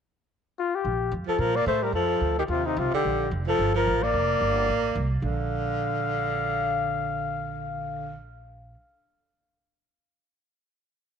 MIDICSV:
0, 0, Header, 1, 5, 480
1, 0, Start_track
1, 0, Key_signature, -2, "major"
1, 0, Tempo, 272975
1, 1495, Time_signature, 4, 2, 24, 8
1, 19682, End_track
2, 0, Start_track
2, 0, Title_t, "Muted trumpet"
2, 0, Program_c, 0, 59
2, 1040, Note_on_c, 0, 65, 81
2, 1319, Note_on_c, 0, 67, 75
2, 1346, Note_off_c, 0, 65, 0
2, 1986, Note_off_c, 0, 67, 0
2, 2269, Note_on_c, 0, 69, 75
2, 2459, Note_on_c, 0, 70, 83
2, 2486, Note_off_c, 0, 69, 0
2, 2740, Note_on_c, 0, 74, 82
2, 2766, Note_off_c, 0, 70, 0
2, 2937, Note_off_c, 0, 74, 0
2, 2945, Note_on_c, 0, 72, 84
2, 3226, Note_on_c, 0, 70, 72
2, 3253, Note_off_c, 0, 72, 0
2, 3414, Note_off_c, 0, 70, 0
2, 3425, Note_on_c, 0, 69, 73
2, 4125, Note_off_c, 0, 69, 0
2, 4204, Note_on_c, 0, 67, 75
2, 4288, Note_off_c, 0, 67, 0
2, 4384, Note_on_c, 0, 65, 79
2, 4677, Note_on_c, 0, 63, 74
2, 4703, Note_off_c, 0, 65, 0
2, 4904, Note_on_c, 0, 65, 81
2, 4930, Note_off_c, 0, 63, 0
2, 5158, Note_off_c, 0, 65, 0
2, 5184, Note_on_c, 0, 67, 72
2, 5796, Note_off_c, 0, 67, 0
2, 6135, Note_on_c, 0, 69, 80
2, 6564, Note_off_c, 0, 69, 0
2, 6622, Note_on_c, 0, 70, 82
2, 7091, Note_on_c, 0, 74, 73
2, 7117, Note_off_c, 0, 70, 0
2, 9001, Note_off_c, 0, 74, 0
2, 9220, Note_on_c, 0, 77, 74
2, 14383, Note_off_c, 0, 77, 0
2, 19682, End_track
3, 0, Start_track
3, 0, Title_t, "Tenor saxophone"
3, 0, Program_c, 1, 66
3, 2228, Note_on_c, 1, 53, 66
3, 2445, Note_off_c, 1, 53, 0
3, 2445, Note_on_c, 1, 53, 69
3, 2733, Note_on_c, 1, 58, 74
3, 2759, Note_off_c, 1, 53, 0
3, 2925, Note_off_c, 1, 58, 0
3, 2936, Note_on_c, 1, 57, 72
3, 3208, Note_on_c, 1, 55, 65
3, 3234, Note_off_c, 1, 57, 0
3, 3406, Note_off_c, 1, 55, 0
3, 3417, Note_on_c, 1, 53, 68
3, 4121, Note_off_c, 1, 53, 0
3, 4193, Note_on_c, 1, 51, 65
3, 4279, Note_off_c, 1, 51, 0
3, 4399, Note_on_c, 1, 48, 63
3, 4649, Note_off_c, 1, 48, 0
3, 4649, Note_on_c, 1, 48, 67
3, 4873, Note_off_c, 1, 48, 0
3, 4873, Note_on_c, 1, 48, 63
3, 5143, Note_off_c, 1, 48, 0
3, 5163, Note_on_c, 1, 50, 73
3, 5784, Note_off_c, 1, 50, 0
3, 6092, Note_on_c, 1, 53, 75
3, 6541, Note_off_c, 1, 53, 0
3, 6586, Note_on_c, 1, 53, 70
3, 7076, Note_on_c, 1, 58, 73
3, 7103, Note_off_c, 1, 53, 0
3, 8994, Note_off_c, 1, 58, 0
3, 9198, Note_on_c, 1, 50, 68
3, 14371, Note_off_c, 1, 50, 0
3, 19682, End_track
4, 0, Start_track
4, 0, Title_t, "Upright bass"
4, 0, Program_c, 2, 32
4, 1488, Note_on_c, 2, 34, 66
4, 1952, Note_off_c, 2, 34, 0
4, 1963, Note_on_c, 2, 41, 76
4, 2227, Note_off_c, 2, 41, 0
4, 2435, Note_on_c, 2, 46, 70
4, 2909, Note_off_c, 2, 46, 0
4, 2920, Note_on_c, 2, 45, 78
4, 3376, Note_off_c, 2, 45, 0
4, 3387, Note_on_c, 2, 41, 65
4, 3865, Note_off_c, 2, 41, 0
4, 3881, Note_on_c, 2, 38, 68
4, 4353, Note_off_c, 2, 38, 0
4, 4362, Note_on_c, 2, 39, 70
4, 4834, Note_off_c, 2, 39, 0
4, 4866, Note_on_c, 2, 36, 86
4, 5120, Note_off_c, 2, 36, 0
4, 5350, Note_on_c, 2, 34, 66
4, 5810, Note_off_c, 2, 34, 0
4, 5828, Note_on_c, 2, 29, 74
4, 6289, Note_off_c, 2, 29, 0
4, 6307, Note_on_c, 2, 31, 70
4, 6769, Note_off_c, 2, 31, 0
4, 6801, Note_on_c, 2, 33, 77
4, 7258, Note_off_c, 2, 33, 0
4, 7273, Note_on_c, 2, 29, 71
4, 7734, Note_off_c, 2, 29, 0
4, 7748, Note_on_c, 2, 31, 74
4, 8212, Note_off_c, 2, 31, 0
4, 8236, Note_on_c, 2, 33, 65
4, 8697, Note_off_c, 2, 33, 0
4, 8711, Note_on_c, 2, 36, 77
4, 9171, Note_off_c, 2, 36, 0
4, 9182, Note_on_c, 2, 34, 70
4, 15360, Note_off_c, 2, 34, 0
4, 19682, End_track
5, 0, Start_track
5, 0, Title_t, "Muted upright bass strokes"
5, 2237, Note_on_c, 9, 29, 33
5, 2413, Note_off_c, 9, 29, 0
5, 5149, Note_on_c, 9, 29, 35
5, 5325, Note_off_c, 9, 29, 0
5, 19682, End_track
0, 0, End_of_file